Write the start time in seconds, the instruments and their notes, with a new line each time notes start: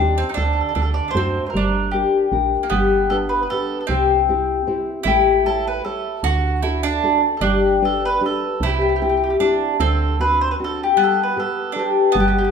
Already playing: mandolin D4
0.00 fm bass D#2, nylon-string guitar C4 D#4 G4
0.18 mandolin C4
0.29 mandolin D#4
0.34 fm bass D2, nylon-string guitar D3, mandolin D4 A4
0.45 mandolin A4
0.53 mandolin A4
0.61 mandolin A4
0.69 mandolin A4
0.75 fm bass D2, nylon-string guitar D3, mandolin D4 A4
0.82 mandolin A4
0.94 mandolin D5
1.08 mandolin D4 C5
1.14 fm bass F#2, nylon-string guitar A3 D4 F#4, mandolin C4
1.46 mandolin A#4 C5
1.54 fm bass G1, nylon-string guitar G3, mandolin D4
1.91 nylon-string guitar D4 G4 A#4, mandolin G4
2.32 fm bass A#1, nylon-string guitar D4 G4 A#4
2.63 mandolin A#3
2.70 fm bass G1, nylon-string guitar G3, mandolin B3 G4
3.10 nylon-string guitar D4 G4 B4, mandolin A4
3.29 mandolin B4
3.43 mandolin B4
3.50 nylon-string guitar D4 G4 B4, mandolin A4
3.80 mandolin A4
3.87 fm bass C2, nylon-string guitar C3, mandolin C4 G4
4.29 nylon-string guitar C4 E4 G4
4.67 nylon-string guitar C4 E4 G4
5.03 fm bass A1, nylon-string guitar A3, mandolin E4 G4
5.46 nylon-string guitar G4 A4 C#5, mandolin A4
5.67 mandolin B4
5.85 nylon-string guitar G4 A4 C#5, mandolin A4
6.23 fm bass D2, nylon-string guitar D3, mandolin F#4
6.62 nylon-string guitar D4 F#4 A4, mandolin E4
6.83 mandolin D4
7.03 nylon-string guitar D4 F#4 A4
7.37 fm bass G1, mandolin A4
7.41 nylon-string guitar G3, mandolin D4 G4
7.82 nylon-string guitar D4 G4 B4, mandolin A4
8.05 mandolin B4
8.21 nylon-string guitar D4 G4 B4
8.26 mandolin A4
8.60 fm bass C2, nylon-string guitar C3, mandolin E4
8.66 mandolin G4
8.74 mandolin G4
8.81 mandolin G4
8.89 mandolin G4
8.96 mandolin G4
9.02 nylon-string guitar C4 E4 G4, mandolin G4
9.09 mandolin G4
9.17 mandolin G4
9.24 mandolin G4
9.30 mandolin G4
9.40 nylon-string guitar C4 E4 G4, mandolin D4
9.79 fm bass D2, nylon-string guitar D3, mandolin C4 A4
10.19 nylon-string guitar C4 D4 F#4, mandolin B4
10.41 mandolin C5
10.51 mandolin B4
10.59 nylon-string guitar C4 D4 F#4
10.64 mandolin A4
10.83 mandolin G4
10.96 nylon-string guitar G3, mandolin B3
11.04 mandolin A4
11.23 mandolin B4
11.36 nylon-string guitar G4 A4 B4, mandolin A4
11.72 mandolin D4, nylon-string guitar G4
11.76 mandolin G4, nylon-string guitar A4 B4
12.12 fm bass G1, mandolin B3
12.16 nylon-string guitar G3, mandolin G4
12.28 mandolin G4
12.38 mandolin G4
12.44 mandolin G4